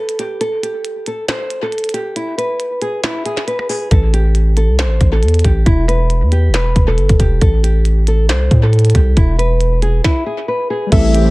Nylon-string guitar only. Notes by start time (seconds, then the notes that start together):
Already playing: A4
0.19 G4
0.41 A4
0.63 G4
1.07 A4
1.28 C5
1.62 A4
1.94 G4
2.16 E4
2.38 B4
2.82 G#4
3.03 E4
3.26 G#4
3.47 B4
3.69 G#4
3.91 A4
4.14 G4
4.57 A4
4.79 C5
5.12 A4
5.45 G4
5.66 E4
5.88 B4
6.32 G4
6.54 B4
6.88 A4
7.20 G4
7.41 A4
7.63 G4
8.08 A4
8.29 C5
8.63 A4
8.94 G4
9.17 E4
9.39 B4
9.82 G#4
10.04 E4
10.26 G#4
10.48 B4
10.70 G#4
10.92 A4
11.14 G4